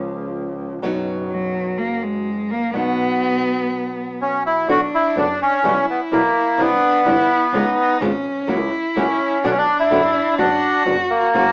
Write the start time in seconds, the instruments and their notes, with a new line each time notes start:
Already playing: double bass C#2, nylon-string guitar C#3 F3 G#3 C#4 F4
0.82 double bass F#1, nylon-string guitar B2 F#3 B3 D#4 F#4
1.31 cello F#3
1.78 double bass F#1, cello A#3
2.03 cello G#3
2.51 cello A#3
2.73 nylon-string guitar B2 F#3 B3 D#4 F#4, cello B3
4.22 bandoneon C#4
4.46 bandoneon E4
4.68 double bass B1, nylon-string guitar B2 D3 B3 D4 F#4, cello D4, bandoneon F#4
4.94 bandoneon E4
5.16 double bass F#1, nylon-string guitar B2 D3 B3 D4 F#4, bandoneon D4
5.42 bandoneon C#4
5.63 double bass B1, nylon-string guitar B2 E3 G3 B3 E4, cello E4
5.90 bandoneon B3
6.12 double bass B1, nylon-string guitar B2 E3 G3 B3 E4, bandoneon A#3
6.58 double bass C2, nylon-string guitar C3 E3 G3 D4 E4, bandoneon B3, cello D4
7.05 double bass G1, nylon-string guitar C3 E3 G3 D4 E4, cello E4
7.53 double bass C#2, nylon-string guitar C#3 G#3 B3 F4 G#4, cello D#4
8.01 double bass G#1, nylon-string guitar C#3 G#3 B3 F4 G#4, cello C#4
8.26 double bass B1
8.47 double bass C#2, nylon-string guitar C#3 F#3 A#3 C#4 F#4, cello E4
8.96 double bass C#2, nylon-string guitar C#3 F#3 A#3 C#4 F#4, bandoneon C#4
9.44 double bass B1, nylon-string guitar B2 D3 B3 D4 F#4, cello D4, bandoneon D4
9.51 bandoneon C#4
9.58 bandoneon D4
9.80 bandoneon E4
9.91 double bass F#1, nylon-string guitar B2 D3 B3 D4 F#4
10.38 double bass F#1, nylon-string guitar B2 F#3 B3 D4 F#4, bandoneon D4, cello F#4
10.86 double bass F#1, nylon-string guitar B2 F#3 B3 D4 F#4
11.10 bandoneon A#3
11.33 double bass F#1, nylon-string guitar C#3 F#3 A#3 C#4 F#4, cello F#4